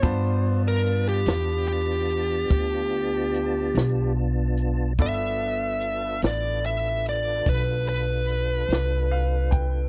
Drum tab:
HH |x-xx-xx-xx-x|x-xx-xx-xx-x|
SD |---o-----o--|---o-----o--|
BD |o-----o-----|o-----o----o|